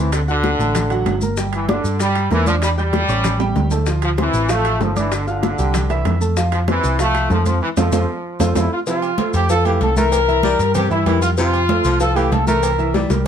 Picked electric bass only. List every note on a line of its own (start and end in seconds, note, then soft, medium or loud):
0.00 0.54 D2 medium
0.59 1.03 A1 medium
1.06 1.79 G1 medium
1.84 2.28 G2 medium
2.31 3.03 E2 medium
3.09 3.52 A1 medium
3.55 4.28 D2 medium
4.34 4.77 A1 medium
4.81 5.53 G1 medium
5.59 6.02 C2 medium
6.06 6.78 F2 medium
6.84 7.27 C2 medium
7.30 7.59 F2 medium
7.77 7.89 F2 medium
7.92 8.04 F2 medium
8.40 8.52 F2 loud
8.56 8.67 F2 medium
9.34 9.78 F2 loud
9.81 10.54 C2 medium
10.59 10.88 G2 medium
10.91 11.05 G2 medium
11.06 11.79 F2 medium
11.84 12.28 C2 medium
12.31 13.04 C2 loud
13.10 13.27 C2 medium